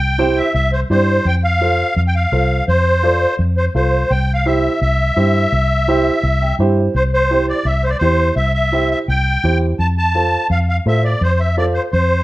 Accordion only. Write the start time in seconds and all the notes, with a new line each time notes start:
Already playing: G5
0.37 E5
0.54 E5
0.73 C5
0.91 C5
1.28 G5
1.44 F5
1.97 F5
2.07 G5
2.15 F5
2.68 C5
3.57 C5
3.75 C5
4.11 G5
4.34 F5
4.46 E5
4.82 E5
6.95 C5
7.14 C5
7.49 D5
7.66 E5
7.84 C5
7.90 D5
7.98 C5
8.36 E5
8.54 E5
8.91 E5
9.09 G5
9.80 A5
9.98 A5
10.51 F5
10.69 F5
10.88 E5
11.04 D5
11.23 C5
11.39 E5
11.58 D5
11.74 C5
11.92 C5